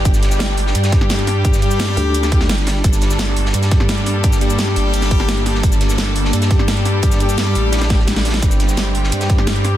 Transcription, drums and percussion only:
0.05 kick, closed hi-hat, shaker
0.14 snare, shaker
0.23 snare, closed hi-hat, shaker
0.31 snare, shaker
0.39 snare, closed hi-hat, shaker
0.49 snare
0.58 closed hi-hat, open hi-hat
0.66 snare
0.75 closed hi-hat, shaker
0.84 snare, closed hi-hat, shaker
0.92 kick, snare, closed hi-hat
1.01 snare
1.10 snare, closed hi-hat, shaker
1.18 snare, closed hi-hat
1.27 snare, closed hi-hat, open hi-hat, shaker
1.45 kick, closed hi-hat, shaker
1.53 snare, shaker
1.62 closed hi-hat, open hi-hat, shaker
1.71 shaker
1.79 snare, closed hi-hat, shaker
1.88 snare
1.97 closed hi-hat, open hi-hat, shaker
2.15 closed hi-hat, shaker
2.23 snare, closed hi-hat, shaker
2.31 kick, closed hi-hat
2.40 snare
2.49 snare, closed hi-hat, shaker
2.58 snare, closed hi-hat
2.67 snare, closed hi-hat, open hi-hat, shaker
2.75 snare
2.84 kick, closed hi-hat, shaker
2.93 snare, shaker
3.01 snare, closed hi-hat, shaker
3.10 snare, shaker
3.19 snare, closed hi-hat, shaker
3.29 snare
3.36 closed hi-hat, open hi-hat
3.45 snare
3.54 closed hi-hat, shaker
3.62 snare, closed hi-hat, shaker
3.71 kick, snare, closed hi-hat
3.80 snare
3.89 snare, closed hi-hat, shaker
3.98 snare, closed hi-hat
4.06 snare, closed hi-hat, open hi-hat, shaker
4.24 kick, closed hi-hat, shaker
4.32 snare, shaker
4.41 closed hi-hat, open hi-hat, shaker
4.50 shaker
4.59 snare, closed hi-hat, shaker
4.67 snare
4.76 closed hi-hat, open hi-hat
4.94 closed hi-hat, shaker
5.02 snare, closed hi-hat, shaker
5.11 kick, closed hi-hat
5.20 snare
5.29 snare, closed hi-hat, shaker
5.37 snare, closed hi-hat
5.46 snare, closed hi-hat, open hi-hat, shaker
5.54 snare
5.63 kick, closed hi-hat, shaker
5.71 snare, shaker
5.81 snare, closed hi-hat, shaker
5.89 snare, shaker
5.98 snare, closed hi-hat, shaker
6.07 snare
6.15 closed hi-hat, open hi-hat
6.25 snare
6.33 closed hi-hat, shaker
6.42 snare, closed hi-hat, shaker
6.49 kick, snare, closed hi-hat
6.59 snare
6.68 snare, closed hi-hat, shaker
6.77 snare, closed hi-hat
6.85 snare, closed hi-hat, open hi-hat, shaker
7.03 kick, closed hi-hat, shaker
7.12 snare, closed hi-hat, shaker
7.20 closed hi-hat, open hi-hat, shaker
7.29 shaker
7.38 snare, closed hi-hat, shaker
7.46 snare
7.55 closed hi-hat, open hi-hat, shaker
7.72 snare, closed hi-hat, shaker
7.77 snare, closed hi-hat
7.81 snare, closed hi-hat, shaker
7.89 kick, snare, closed hi-hat
7.99 snare
8.07 snare, closed hi-hat, shaker
8.16 snare, closed hi-hat
8.25 snare, closed hi-hat, open hi-hat, shaker
8.30 snare, closed hi-hat
8.33 snare, closed hi-hat
8.38 snare, closed hi-hat
8.42 kick, closed hi-hat, shaker
8.50 snare, shaker
8.60 snare, closed hi-hat, shaker
8.69 snare, shaker
8.77 snare, closed hi-hat, shaker
8.86 snare
8.95 closed hi-hat, open hi-hat
9.03 snare
9.12 closed hi-hat, shaker
9.21 snare, closed hi-hat, shaker
9.29 kick, closed hi-hat
9.38 snare
9.47 snare, closed hi-hat, shaker
9.56 snare, closed hi-hat
9.64 snare, closed hi-hat, open hi-hat, shaker

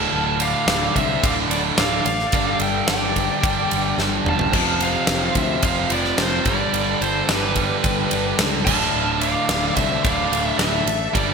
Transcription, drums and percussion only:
0.40 ride
0.68 snare, ride
0.96 kick, ride
1.23 kick, ride
1.51 ride
1.78 snare, ride
2.06 ride
2.19 snare
2.32 kick, ride
2.60 ride
2.88 snare, ride
3.16 kick, ride
3.43 kick, ride
3.71 ride
3.99 snare
4.26 mid tom
4.39 floor tom
4.53 kick, crash
4.80 ride
5.07 snare, ride
5.35 kick, ride
5.62 kick, ride
5.90 ride
6.04 snare
6.18 snare, ride
6.45 kick, ride
6.74 ride
7.02 ride
7.29 snare, ride
7.56 kick, ride
7.84 kick, ride
8.11 ride
8.39 snare, ride
8.67 kick, crash
8.81 snare
9.21 ride
9.49 snare, ride
9.76 kick, ride
10.04 kick, ride
10.33 ride
10.59 snare, ride
10.87 ride
11.15 kick, ride

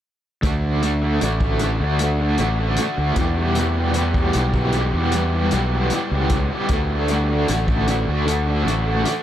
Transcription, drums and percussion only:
0.43 kick, closed hi-hat
0.82 closed hi-hat
1.21 closed hi-hat
1.41 kick
1.59 closed hi-hat
1.99 closed hi-hat
2.38 closed hi-hat
2.76 closed hi-hat
3.16 kick, closed hi-hat
3.55 closed hi-hat
3.94 closed hi-hat
4.14 kick
4.33 closed hi-hat
4.54 kick
4.72 closed hi-hat
5.12 closed hi-hat
5.51 closed hi-hat
5.90 closed hi-hat
6.29 kick, closed hi-hat
6.69 kick, closed hi-hat
7.08 closed hi-hat
7.48 closed hi-hat
7.68 kick
7.87 closed hi-hat
8.28 closed hi-hat
8.68 closed hi-hat
9.05 closed hi-hat

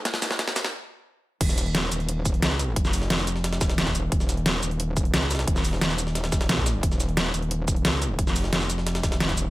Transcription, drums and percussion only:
0.05 kick, snare, closed hi-hat
0.14 snare, shaker
0.22 snare, closed hi-hat, open hi-hat, shaker
0.31 snare
0.39 kick, snare, closed hi-hat
0.48 snare, shaker
0.56 snare, closed hi-hat, shaker
0.64 snare
1.41 kick, closed hi-hat, crash
1.49 snare, shaker
1.58 snare, closed hi-hat, shaker
1.66 closed hi-hat
1.75 snare, closed hi-hat
1.92 closed hi-hat, shaker
2.00 closed hi-hat
2.09 closed hi-hat
2.25 kick, closed hi-hat, shaker
2.34 closed hi-hat
2.42 snare, closed hi-hat
2.51 closed hi-hat
2.59 closed hi-hat, shaker
2.76 kick, closed hi-hat
2.85 snare, shaker
2.93 closed hi-hat, open hi-hat, shaker
3.02 snare
3.10 snare, closed hi-hat
3.19 snare, shaker
3.27 closed hi-hat, shaker
3.36 snare
3.44 snare, closed hi-hat
3.53 snare, closed hi-hat
3.61 kick, snare, closed hi-hat, shaker
3.70 snare, closed hi-hat
3.78 snare, closed hi-hat
3.86 kick, snare, closed hi-hat
3.95 closed hi-hat, shaker
4.12 kick, closed hi-hat
4.20 snare, shaker
4.29 snare, closed hi-hat, shaker
4.37 closed hi-hat
4.46 snare, closed hi-hat
4.63 closed hi-hat, shaker
4.71 closed hi-hat
4.80 closed hi-hat
4.97 kick, closed hi-hat, shaker
5.05 closed hi-hat
5.14 snare, closed hi-hat
5.22 closed hi-hat
5.31 snare, closed hi-hat, shaker
5.35 snare, closed hi-hat
5.39 snare, closed hi-hat
5.47 kick, closed hi-hat
5.56 snare, shaker
5.65 closed hi-hat, open hi-hat, shaker
5.73 snare
5.81 snare, closed hi-hat
5.90 snare, shaker
5.98 closed hi-hat, shaker
6.07 snare
6.15 snare, closed hi-hat
6.24 snare, closed hi-hat
6.32 kick, snare, closed hi-hat, shaker
6.41 snare, closed hi-hat
6.49 snare, closed hi-hat
6.58 kick, snare
6.66 snare, closed hi-hat, shaker
6.83 kick, closed hi-hat
6.92 snare, shaker
7.00 snare, closed hi-hat, shaker
7.09 closed hi-hat
7.17 snare, closed hi-hat
7.34 closed hi-hat, shaker
7.42 closed hi-hat
7.51 closed hi-hat
7.68 kick, closed hi-hat, shaker
7.76 closed hi-hat
7.85 snare, closed hi-hat
7.93 closed hi-hat
8.02 closed hi-hat, shaker
8.19 kick, closed hi-hat
8.27 snare, shaker
8.36 closed hi-hat, open hi-hat, shaker
8.44 snare
8.53 snare, closed hi-hat
8.61 snare, shaker
8.70 closed hi-hat, shaker
8.78 snare
8.87 snare, closed hi-hat
8.95 snare, closed hi-hat
9.03 kick, snare, closed hi-hat, shaker
9.12 snare, closed hi-hat
9.20 snare, closed hi-hat
9.29 kick, snare, closed hi-hat
9.37 closed hi-hat, shaker

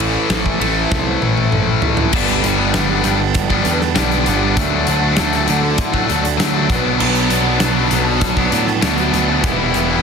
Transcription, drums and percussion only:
0.00 ride
0.30 snare, ride
0.46 kick
0.61 ride
0.92 kick, snare
1.22 high tom
1.37 high tom
1.52 mid tom
1.82 floor tom
1.97 floor tom
2.13 kick, crash
2.28 closed hi-hat
2.44 closed hi-hat
2.74 snare, closed hi-hat
3.04 closed hi-hat
3.34 kick, closed hi-hat
3.50 kick
3.65 closed hi-hat
3.81 snare
3.96 snare, closed hi-hat
4.12 closed hi-hat
4.26 closed hi-hat
4.57 kick, closed hi-hat
4.87 closed hi-hat
5.17 snare, closed hi-hat
5.33 snare, closed hi-hat
5.48 closed hi-hat
5.78 kick, closed hi-hat
5.94 kick
6.10 closed hi-hat
6.25 closed hi-hat
6.40 snare, closed hi-hat
6.70 kick, closed hi-hat
7.00 crash
7.15 closed hi-hat
7.30 closed hi-hat
7.60 snare, closed hi-hat
7.91 closed hi-hat
8.21 kick, closed hi-hat
8.37 kick
8.52 closed hi-hat
8.67 snare
8.82 snare, closed hi-hat
8.98 closed hi-hat
9.14 closed hi-hat
9.44 kick, closed hi-hat
9.74 closed hi-hat

